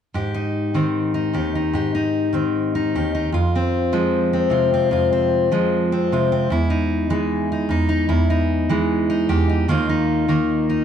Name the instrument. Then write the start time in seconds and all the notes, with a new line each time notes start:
steel-string acoustic guitar
0.14 G#2 G4
0.34 D#4
0.74 D#3 C4
1.14 D#4
1.33 D#2 G4
1.55 D#4
1.73 G#2 G4
1.95 D#4
2.33 D#3 C4
2.75 D#4
2.95 D#2 G4
3.15 D#4
3.32 F2 F4
3.55 C4
3.93 F3 G#3
4.33 C4
4.50 C3 F4
4.74 C4
4.91 F2 F4
5.13 C4
5.52 F3 G#3
5.92 C4
6.12 C3 F4
6.32 C4
6.50 E2 E4
6.70 D#4
7.10 E3 G#3
7.52 D#4
7.69 E2 D#4
7.89 D#4
8.09 E2 E4
8.30 D#4
8.69 E3 G#3
9.10 D#4
9.29 E2 G4
9.49 D#4
9.68 D#2 D#3 A#3 D#4 F4
9.89 D#4
10.28 D#3 A#3
10.69 D#4